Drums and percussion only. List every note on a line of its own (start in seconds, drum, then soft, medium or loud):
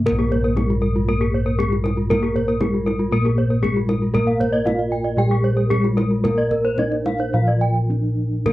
0.06 kendang low soft
0.19 kendang slap soft
0.32 kendang low soft
0.45 kendang slap soft
0.57 kendang high soft
0.57 kendang low soft
0.70 kendang slap soft
1.22 kendang slap soft
1.60 kendang low soft
1.73 kendang slap soft
1.86 kendang high soft
2.11 kendang high soft
2.11 kendang low soft
2.23 kendang slap soft
2.36 kendang low soft
2.49 kendang slap soft
2.60 kendang high soft
2.60 kendang low soft
2.74 kendang slap soft
2.87 kendang high soft
3.26 kendang slap soft
3.64 kendang low soft
3.76 kendang slap soft
3.89 kendang high soft
4.15 kendang low soft
4.28 kendang slap soft
4.41 kendang low soft
4.54 kendang slap soft
4.67 kendang high soft
4.67 kendang low soft
4.80 kendang slap soft
5.32 kendang slap soft
5.71 kendang low soft
5.84 kendang slap soft
5.98 kendang high soft
6.25 kendang high soft
6.25 kendang low soft
6.37 kendang slap soft
6.51 kendang low soft
6.65 kendang slap soft
6.78 kendang high soft
6.78 kendang low soft
6.92 kendang slap soft
7.06 kendang high soft
7.19 kendang slap soft
7.47 kendang slap soft
8.46 kendang low soft